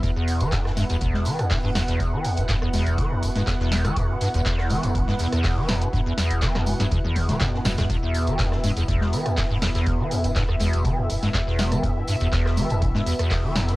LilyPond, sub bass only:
\new Staff \with { instrumentName = "Sub bass" } { \clef bass \time 4/4 \key e \minor \tempo 4 = 122 e,,16 r8 e,,4 d,,16 a,,16 r8. d,,16 e,,8. | e,,16 r8 e,,4 d,,16 r8 e,,16 d,,16 r16 e,,8. | e,,16 r8 e,,4 d,,16 a,,16 r8. d,,16 e,,8. | e,,16 r8 e,,4 d,,16 r8 e,,16 d,,16 r8 e,,16 d,,16 |
e,,16 r8 e,,4 d,,16 a,,16 r8. d,,16 e,,8. | e,,16 r8 e,,4 d,,16 r8 e,,16 d,,16 r16 e,,8. | e,,16 r8 e,,4 d,,16 a,,16 r8. d,,16 e,,8. | }